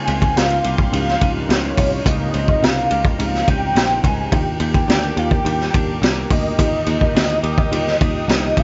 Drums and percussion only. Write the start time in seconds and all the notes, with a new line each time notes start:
0.07 ride
0.22 kick, ride
0.37 snare, ride
0.50 ride
0.64 ride
0.78 kick
0.93 ride
1.08 snare
1.21 kick, ride
1.50 snare, ride
1.78 kick, open hi-hat, ride
2.06 kick, hi-hat pedal, ride
2.34 ride
2.48 kick
2.63 snare, ride
2.91 ride
3.05 kick
3.20 ride
3.34 snare
3.48 kick, ride
3.76 snare, ride
4.04 kick, ride
4.32 kick, ride
4.60 ride
4.74 kick, ride
4.90 snare, ride
5.03 ride
5.17 ride
5.31 kick
5.46 ride
5.61 snare
5.74 kick, ride
6.03 snare, ride
6.30 kick, open hi-hat, ride
6.59 kick, hi-hat pedal, ride
6.86 ride
7.01 kick
7.16 snare, ride
7.29 ride
7.43 ride
7.58 kick
7.72 ride
7.87 snare
8.01 kick, ride
8.29 snare, ride
8.57 kick, ride